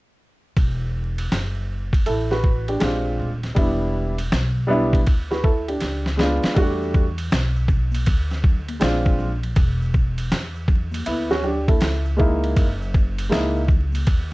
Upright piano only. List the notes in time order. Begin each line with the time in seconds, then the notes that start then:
2.06 E4 A4
2.31 F#4 B4
2.69 D4 G4
2.80 G#3 C4 D4 F4
3.55 G3 B3 D4 E4
4.67 G3 B3 D4 E4
5.31 F#4 B4
5.44 E4 A4
5.68 D4 G4
6.17 G#3 B3 D4 F4
6.54 G3 A3 D4 F#4
8.80 G#3 C4 D4 F4
11.06 B3 E4
11.31 C#4 F#4
11.44 D4 G4
11.68 E4 A4
12.17 G#3 A#3 D#4 E4
13.29 G#3 A#3 D#4 E4